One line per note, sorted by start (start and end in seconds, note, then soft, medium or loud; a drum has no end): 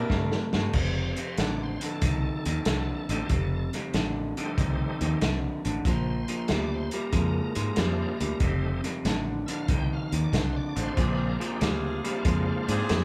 0.00 0.45 D4 medium
0.00 0.45 E4 medium
0.00 0.46 A#4 medium
0.10 0.36 G2 medium
0.10 0.49 C3 medium
0.10 0.50 A3 medium
0.10 kick medium
0.10 snare medium
0.32 snare medium
0.53 0.66 G2 medium
0.53 0.73 C3 medium
0.53 0.73 A3 medium
0.53 snare loud
0.73 1.13 F1 medium
0.73 1.13 F2 medium
0.73 1.13 C3 medium
0.73 kick loud
0.73 snare soft
0.73 crash medium
0.78 0.96 C5 loud
0.98 1.38 C5 medium
1.16 1.37 F2 medium
1.16 1.37 C3 medium
1.16 closed hi-hat medium
1.37 1.77 A1 medium
1.37 1.78 F2 medium
1.37 1.78 D3 medium
1.37 1.61 D5 medium
1.37 snare loud
1.37 closed hi-hat medium
1.63 1.82 C5 medium
1.81 2.01 F2 medium
1.81 2.01 D3 medium
1.81 closed hi-hat medium
1.85 3.71 A4 medium
2.02 2.28 C2 medium
2.02 2.42 F2 medium
2.02 2.42 D#3 medium
2.02 kick loud
2.02 closed hi-hat medium
2.45 2.59 D#2 medium
2.45 2.65 F2 medium
2.45 2.65 D#3 medium
2.45 closed hi-hat medium
2.65 2.92 C2 medium
2.65 3.05 F2 medium
2.65 3.06 D3 medium
2.65 snare loud
2.65 closed hi-hat medium
3.09 3.22 A1 medium
3.09 3.29 F2 medium
3.09 3.29 D3 medium
3.09 3.28 G3 medium
3.09 3.28 A3 medium
3.09 3.29 C4 medium
3.09 3.29 D#4 medium
3.09 closed hi-hat medium
3.29 3.69 F1 medium
3.29 3.70 F2 medium
3.29 3.70 C3 medium
3.29 kick loud
3.29 closed hi-hat medium
3.73 3.93 F2 medium
3.73 3.93 C3 medium
3.73 snare soft
3.73 closed hi-hat medium
3.93 4.33 A1 medium
3.93 4.33 F2 medium
3.93 4.34 D3 medium
3.93 snare loud
3.93 closed hi-hat medium
4.37 4.56 F2 medium
4.37 4.57 D3 medium
4.37 5.18 G3 medium
4.37 5.18 A3 medium
4.37 5.18 C4 medium
4.37 5.19 D#4 medium
4.37 closed hi-hat medium
4.58 4.84 C2 medium
4.58 4.97 F2 medium
4.58 4.97 D#3 medium
4.58 kick loud
4.58 closed hi-hat medium
5.01 5.14 D#2 medium
5.01 5.20 F2 medium
5.01 5.20 D#3 medium
5.01 closed hi-hat medium
5.21 5.48 C2 medium
5.21 5.61 F2 medium
5.21 5.61 D3 medium
5.21 snare loud
5.21 closed hi-hat medium
5.65 5.78 A1 medium
5.65 5.84 F2 medium
5.65 5.84 D3 medium
5.65 closed hi-hat medium
5.85 6.24 A#1 medium
5.85 6.25 A#2 medium
5.85 6.25 F3 medium
5.85 6.08 C5 loud
5.85 kick loud
5.85 snare soft
5.85 closed hi-hat medium
6.10 6.50 C5 medium
6.28 6.48 A#2 medium
6.28 6.48 F3 medium
6.28 closed hi-hat medium
6.48 6.89 D2 medium
6.48 6.89 A#2 medium
6.48 6.89 G3 medium
6.48 snare loud
6.48 closed hi-hat medium
6.53 6.72 D5 medium
6.74 6.93 C5 medium
6.91 7.11 A#2 medium
6.91 7.12 G3 medium
6.91 8.39 A#4 medium
6.91 closed hi-hat medium
7.13 7.39 F2 medium
7.13 7.52 A#2 medium
7.13 7.52 G#3 medium
7.13 kick loud
7.13 closed hi-hat medium
7.55 7.69 G#2 medium
7.55 7.75 A#2 medium
7.55 7.75 G#3 medium
7.55 closed hi-hat medium
7.76 8.04 F2 medium
7.76 8.16 A#2 medium
7.76 8.16 F3 medium
7.76 8.17 G3 medium
7.76 8.16 G#3 medium
7.76 8.17 C4 medium
7.76 8.17 D4 medium
7.76 snare loud
7.76 closed hi-hat medium
8.20 8.33 D2 medium
8.20 8.40 A#2 medium
8.20 8.40 G3 medium
8.20 closed hi-hat medium
8.40 8.79 F1 medium
8.40 8.80 F2 medium
8.40 8.81 C3 medium
8.40 8.81 G3 medium
8.40 8.81 A3 medium
8.40 8.81 C4 medium
8.40 8.81 D#4 medium
8.40 kick loud
8.40 closed hi-hat medium
8.84 9.03 F2 medium
8.84 9.04 C3 medium
8.84 snare soft
8.84 closed hi-hat medium
9.05 9.44 A1 medium
9.05 9.45 F2 medium
9.05 9.45 D3 medium
9.05 snare loud
9.05 closed hi-hat medium
9.46 9.68 F2 medium
9.46 9.68 D3 medium
9.46 9.51 E5 medium
9.46 closed hi-hat medium
9.51 9.70 F5 loud
9.68 9.95 C2 medium
9.68 10.09 F2 medium
9.68 10.09 D#3 medium
9.68 9.91 G5 medium
9.68 kick loud
9.68 closed hi-hat medium
9.93 10.13 F5 medium
10.12 10.25 D#2 medium
10.12 10.32 F2 medium
10.12 10.32 D#3 medium
10.12 10.34 D5 medium
10.12 closed hi-hat medium
10.33 10.59 C2 medium
10.33 10.73 F2 medium
10.33 10.73 D3 medium
10.33 10.55 C5 medium
10.33 kick medium
10.33 snare loud
10.33 closed hi-hat medium
10.56 10.76 D5 medium
10.76 10.89 A1 medium
10.76 10.95 F2 medium
10.76 10.95 D3 medium
10.76 11.57 F3 medium
10.76 11.57 G#3 medium
10.76 11.58 C4 medium
10.76 11.58 D4 medium
10.76 10.98 C5 medium
10.76 closed hi-hat medium
10.96 11.36 A#1 medium
10.96 11.36 A#2 medium
10.96 11.36 F3 medium
10.96 11.36 C4 medium
10.96 11.36 D4 medium
10.96 11.37 G#4 medium
10.96 11.19 B4 loud
10.96 kick loud
10.96 closed hi-hat medium
11.18 11.39 A#4 medium
11.40 11.59 A#2 medium
11.40 11.59 F3 medium
11.40 11.61 G4 medium
11.40 closed hi-hat medium
11.51 12.17 C4 medium
11.51 12.17 D4 medium
11.51 12.18 G#4 medium
11.61 12.00 D2 medium
11.61 12.00 A#2 medium
11.61 12.00 G3 medium
11.61 12.86 F4 medium
11.61 snare loud
11.61 closed hi-hat medium
12.04 12.23 A#2 medium
12.04 12.85 F3 medium
12.04 12.23 G3 medium
12.04 12.86 G#3 medium
12.04 12.86 C4 medium
12.04 12.86 D4 medium
12.04 closed hi-hat medium
12.25 12.51 F2 medium
12.25 12.64 A#2 medium
12.25 12.64 G#3 medium
12.25 kick loud
12.25 closed hi-hat medium
12.68 12.81 G#2 medium
12.68 12.87 A#2 medium
12.68 12.87 G#3 medium
12.68 13.04 C4 medium
12.68 13.04 D4 medium
12.68 13.04 G#4 loud
12.68 closed hi-hat medium
12.89 13.04 F2 medium
12.89 13.04 A#2 medium
12.89 13.04 G3 medium
12.89 snare loud
12.89 closed hi-hat medium